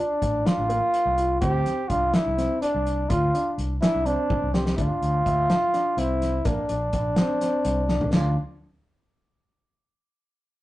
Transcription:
Already playing: grand piano D4, flugelhorn D4
0.22 fingered electric bass A1, kick, closed hi-hat
0.45 grand piano D4, flugelhorn F4, snare, closed hi-hat
0.58 fingered electric bass A1
0.69 grand piano A#3, closed hi-hat
0.94 closed hi-hat
1.05 fingered electric bass C2
1.18 grand piano F4, closed hi-hat
1.41 fingered electric bass D2, grand piano C4, flugelhorn G4, kick, closed hi-hat
1.66 snare, closed hi-hat
1.88 fingered electric bass C2, grand piano D4, flugelhorn F4, kick, closed hi-hat
2.14 flugelhorn E4, snare, closed hi-hat
2.26 fingered electric bass C2
2.38 grand piano C4, snare, closed hi-hat
2.61 flugelhorn D4, grand piano D4, closed hi-hat
2.75 fingered electric bass C2
2.87 closed hi-hat
3.09 fingered electric bass D2, flugelhorn F4, grand piano F4, kick, closed hi-hat
3.34 grand piano D4, closed hi-hat
3.58 fingered electric bass C2, closed hi-hat
3.81 grand piano D4, flugelhorn E4, snare, closed hi-hat
3.94 fingered electric bass C2
4.06 grand piano C4, flugelhorn D4, closed hi-hat
4.30 kick, high tom
4.42 fingered electric bass C2
4.54 flugelhorn C4, grand piano G4, snare
4.66 snare
4.76 fingered electric bass D2, grand piano D4, flugelhorn F4, kick, closed hi-hat
5.01 fingered electric bass D2, closed hi-hat
5.25 fingered electric bass D2, grand piano E5, kick, closed hi-hat
5.50 snare, closed hi-hat
5.74 grand piano D4, snare, closed hi-hat
5.97 fingered electric bass C2, grand piano C4, flugelhorn E4, closed hi-hat
6.22 snare, closed hi-hat
6.45 fingered electric bass A#1, grand piano A#3, flugelhorn D4, kick, closed hi-hat
6.69 fingered electric bass A#1, grand piano D4, closed hi-hat
6.93 fingered electric bass A#1, kick, closed hi-hat
7.16 grand piano C4, snare, closed hi-hat
7.41 grand piano C4, snare, closed hi-hat
7.65 fingered electric bass C2, closed hi-hat
7.89 grand piano D4, snare
8.01 floor tom
8.13 fingered electric bass D2, grand piano D4, flugelhorn F4, snare, crash

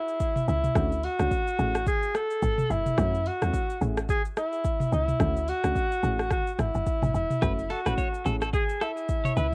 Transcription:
Already playing: alto saxophone E4
0.08 shaker
0.20 kick, shaker
0.36 mid tom, shaker
0.48 log drum bass C#2, alto saxophone E4, shaker
0.64 mid tom, shaker
0.75 log drum bass D2, synth keys A3 C#4 D4 F#4, kick, cross-stick, shaker
0.92 shaker
1.03 alto saxophone F#4, open hi-hat
1.19 log drum bass C#2, synth keys A3 C#4 D4 F#4, cross-stick, shaker
1.31 kick, shaker
1.47 shaker
1.59 log drum bass A1, synth keys A3 C#4 E4 G#4, shaker
1.75 cross-stick, shaker
1.87 alto saxophone G#4, kick, shaker
2.03 shaker
2.14 alto saxophone A4, cross-stick, shaker
2.30 shaker
2.42 log drum bass G#1, kick, shaker
2.58 mid tom, shaker
2.70 log drum bass F#1, alto saxophone E4, shaker
2.86 mid tom, shaker
2.97 log drum bass F#2, synth keys A3 C#4 E4 F#4, kick, cross-stick, shaker
3.14 shaker
3.26 alto saxophone F#4, open hi-hat
3.41 log drum bass E2, synth keys A3 C#4 E4 F#4, cross-stick, shaker
3.53 kick, shaker
3.70 shaker
3.81 log drum bass A1, synth keys A3 C#4 E4 G#4, shaker
3.97 cross-stick, shaker
4.09 alto saxophone G#4, kick, shaker
4.25 shaker
4.37 alto saxophone E4, cross-stick, shaker
4.52 shaker
4.64 kick, shaker
4.80 mid tom, shaker
4.92 log drum bass C#2, alto saxophone E4, shaker
5.08 mid tom, shaker
5.20 log drum bass D2, synth keys A3 C#4 D4 F#4, kick, cross-stick, shaker
5.37 shaker
5.48 alto saxophone F#4, open hi-hat, shaker
5.64 log drum bass C#2, synth keys A3 C#4 D4 F#4, cross-stick, shaker
5.76 kick, shaker
5.92 shaker
6.03 log drum bass A1, synth keys A3 C#4 E4 G#4, shaker
6.19 cross-stick, shaker
6.31 alto saxophone F#4, kick, cross-stick, shaker
6.47 shaker
6.54 alto saxophone F#4
6.59 log drum bass G#1, alto saxophone E4, cross-stick, shaker
6.75 log drum bass F#1, shaker
6.87 kick, shaker
7.02 log drum bass G#1, mid tom, shaker
7.14 log drum bass E1, alto saxophone E4, shaker
7.30 mid tom, shaker
7.42 log drum bass F#1, synth keys A3 C#4 E4 F#4, clean electric guitar B4, kick, cross-stick, shaker
7.59 shaker
7.70 alto saxophone F#4, clean electric guitar A4, open hi-hat
7.86 log drum bass A1, synth keys A3 C#4 E4 F#4, clean electric guitar B4, cross-stick, shaker
7.98 clean electric guitar C#5, kick, shaker
8.14 shaker
8.25 log drum bass A1, synth keys A3 C#4 E4 G#4, clean electric guitar A4, shaker
8.41 clean electric guitar A4, cross-stick, shaker
8.53 clean electric guitar G#4, alto saxophone G#4, kick, shaker
8.69 shaker
8.81 alto saxophone E4, clean electric guitar A4, cross-stick, shaker
8.97 shaker
9.09 kick, shaker
9.24 clean electric guitar C#5, mid tom, shaker
9.37 log drum bass C#2, alto saxophone E4, clean electric guitar B4, shaker

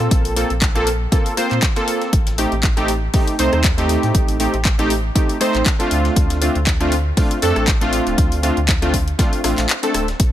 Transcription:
Already playing: synth keys A#3 C4 F4 A4
0.00 closed hi-hat
0.11 sub bass A#1, kick, closed hi-hat
0.25 closed hi-hat, open hi-hat
0.36 synth keys A#3 C4 F4 A4, closed hi-hat, open hi-hat
0.50 sub bass A#1, closed hi-hat
0.62 kick, snare, clap, closed hi-hat
0.75 synth keys A#3 C4 F4 A4, cross-stick, closed hi-hat
0.87 closed hi-hat, open hi-hat
1.12 synth keys A#3 C4 F4 A4, kick, closed hi-hat
1.26 open hi-hat
1.37 synth keys A#3 C4 F4 C5, cross-stick, closed hi-hat, open hi-hat
1.51 sub bass A#2, clap, closed hi-hat
1.62 kick, snare, clap, closed hi-hat
1.76 synth keys A#3 C4 F4 A4, snare, closed hi-hat
1.88 closed hi-hat, open hi-hat
2.02 snare, closed hi-hat
2.13 sub bass A1, kick, closed hi-hat
2.27 snare, closed hi-hat
2.38 synth keys A3 C4 D#4 G4, closed hi-hat, open hi-hat
2.52 sub bass A1, closed hi-hat
2.63 kick, snare, clap, closed hi-hat
2.77 synth keys A3 C4 D#4 G4, cross-stick, closed hi-hat
2.88 closed hi-hat, open hi-hat
3.13 synth keys A3 C4 D#4 G4, kick, closed hi-hat, open hi-hat
3.27 closed hi-hat
3.38 sub bass C2, synth keys A3 C4 D#4 C5, closed hi-hat, open hi-hat
3.53 sub bass D#2, cross-stick, closed hi-hat
3.64 kick, snare, clap, closed hi-hat
3.77 synth keys A3 C4 D#4 G4, snare, closed hi-hat
3.89 closed hi-hat, open hi-hat
4.03 sub bass A2, closed hi-hat
4.15 sub bass A1, kick, closed hi-hat
4.28 closed hi-hat, open hi-hat
4.39 synth keys A3 C4 D#4 G4, closed hi-hat, open hi-hat
4.54 sub bass A1, closed hi-hat
4.65 kick, snare, clap, closed hi-hat
4.78 synth keys A3 C4 D#4 G4, cross-stick, closed hi-hat
4.90 closed hi-hat, open hi-hat
5.15 synth keys A3 C4 D#4 G4, kick, closed hi-hat
5.29 open hi-hat
5.40 synth keys A3 C4 D#4 C5, cross-stick, closed hi-hat, open hi-hat
5.55 sub bass A1, clap, closed hi-hat
5.66 kick, snare, clap, closed hi-hat
5.79 synth keys A3 C4 D4 F4, snare, closed hi-hat
5.91 sub bass D2, closed hi-hat, open hi-hat
6.05 snare, closed hi-hat
6.16 sub bass D2, kick, closed hi-hat
6.30 snare, closed hi-hat
6.41 synth keys A3 C4 D4 F4, closed hi-hat, open hi-hat
6.55 sub bass D2, closed hi-hat
6.67 kick, snare, clap, closed hi-hat
6.80 synth keys A3 C4 D4 F4, cross-stick, closed hi-hat
6.92 closed hi-hat, open hi-hat
7.17 synth keys A3 C4 D4 F4, kick, closed hi-hat, open hi-hat
7.31 closed hi-hat
7.42 sub bass F2, synth keys A3 C4 D4 A4, closed hi-hat, open hi-hat
7.56 sub bass A1, cross-stick, closed hi-hat
7.68 kick, snare, clap, closed hi-hat
7.81 synth keys A3 C4 D4 F4, snare, closed hi-hat
7.93 closed hi-hat, open hi-hat
8.07 sub bass D1, closed hi-hat
8.18 sub bass D2, kick, closed hi-hat
8.32 closed hi-hat, open hi-hat
8.43 synth keys A3 C4 D4 F4, closed hi-hat, open hi-hat
8.57 sub bass D2, closed hi-hat
8.68 kick, snare, clap, closed hi-hat
8.82 synth keys A3 C4 D4 F4, cross-stick, closed hi-hat
8.94 kick, closed hi-hat, open hi-hat
9.08 closed hi-hat
9.19 synth keys A3 C4 D4 F4, kick, snare, closed hi-hat
9.33 open hi-hat
9.44 sub bass A1, synth keys A3 C4 D4 F4, cross-stick, snare, closed hi-hat, open hi-hat
9.58 sub bass A1, snare, clap, closed hi-hat
9.69 clap, closed hi-hat
9.83 synth keys A3 C4 D4 A4, closed hi-hat
9.94 sub bass D1, cross-stick, closed hi-hat, open hi-hat
10.08 snare, closed hi-hat
10.20 sub bass A#1, kick, closed hi-hat

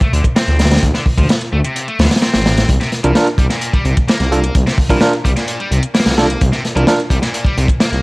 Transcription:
0.01 distorted electric guitar A3, kick, closed hi-hat
0.13 detuned saw bass D2, distorted electric guitar D3, closed hi-hat
0.24 kick, closed hi-hat
0.36 distorted electric guitar C4, snare, closed hi-hat
0.48 detuned saw bass D2, snare, closed hi-hat
0.59 snare, closed hi-hat
0.65 snare, closed hi-hat
0.71 snare, closed hi-hat
0.76 snare, closed hi-hat
0.83 detuned saw bass D2, kick, closed hi-hat
0.94 distorted electric guitar D3, snare, closed hi-hat
1.06 kick, open hi-hat
1.17 detuned saw bass D2, distorted electric guitar F3, kick, closed hi-hat
1.29 snare, closed hi-hat
1.41 closed hi-hat
1.53 detuned saw bass D2, distorted electric guitar A3
1.64 distorted electric guitar C3, closed hi-hat
1.76 closed hi-hat
1.88 distorted electric guitar A3, closed hi-hat
1.99 detuned saw bass D2, distorted electric guitar D3, snare, closed hi-hat
2.05 snare, closed hi-hat
2.11 snare, closed hi-hat
2.16 snare, closed hi-hat
2.22 distorted electric guitar C4, snare, closed hi-hat
2.34 detuned saw bass A1, snare, closed hi-hat
2.46 snare, closed hi-hat
2.57 snare, closed hi-hat
2.69 detuned saw bass C2, kick, closed hi-hat
2.81 distorted electric guitar C3, snare, closed hi-hat
2.92 snare, closed hi-hat
3.04 detuned saw bass C2, distorted electric guitar E3, tine electric piano D4 F4 A#4, closed hi-hat
3.15 tine electric piano D4 F4 A#4, snare, closed hi-hat
3.27 closed hi-hat
3.38 detuned saw bass C2, distorted electric guitar G3, kick, closed hi-hat
3.50 distorted electric guitar A#2, snare, closed hi-hat
3.61 closed hi-hat
3.73 distorted electric guitar G3, kick, closed hi-hat
3.85 detuned saw bass C2, distorted electric guitar C3, closed hi-hat
3.97 kick, closed hi-hat
4.08 distorted electric guitar A#3, snare, closed hi-hat
4.20 detuned saw bass C2, snare, closed hi-hat
4.32 tine electric piano D4 F4 A4, closed hi-hat
4.44 closed hi-hat
4.55 detuned saw bass C2, kick, closed hi-hat
4.67 distorted electric guitar C3, snare, closed hi-hat
4.78 kick, open hi-hat
4.89 detuned saw bass C2, distorted electric guitar E3, tine electric piano D4 F4 A#4, kick, closed hi-hat
5.01 tine electric piano D4 F4 A#4, snare, closed hi-hat
5.13 closed hi-hat
5.24 detuned saw bass C2, distorted electric guitar G3, kick, closed hi-hat
5.37 distorted electric guitar A#2, snare, closed hi-hat
5.48 closed hi-hat
5.60 distorted electric guitar G3, closed hi-hat
5.71 detuned saw bass C2, distorted electric guitar C3, closed hi-hat
5.83 closed hi-hat
5.94 distorted electric guitar A#3, snare, closed hi-hat
6.00 snare, closed hi-hat
6.06 detuned saw bass C2, snare, closed hi-hat
6.11 snare, closed hi-hat
6.18 tine electric piano D4 F4 A4, snare, closed hi-hat
6.30 closed hi-hat
6.41 detuned saw bass C2, kick, closed hi-hat
6.52 distorted electric guitar C3, snare, closed hi-hat
6.65 snare, closed hi-hat
6.76 detuned saw bass C2, distorted electric guitar E3, tine electric piano D4 F4 A#4, closed hi-hat
6.87 tine electric piano D4 F4 A#4, snare, closed hi-hat
7.00 closed hi-hat
7.10 detuned saw bass C2, distorted electric guitar G3, kick, closed hi-hat
7.22 distorted electric guitar A#2, snare, closed hi-hat
7.34 closed hi-hat
7.45 distorted electric guitar G3, kick, closed hi-hat
7.57 detuned saw bass C2, distorted electric guitar C3, closed hi-hat
7.68 kick, closed hi-hat
7.80 distorted electric guitar A#3, snare, closed hi-hat
7.92 detuned saw bass C2, snare, closed hi-hat

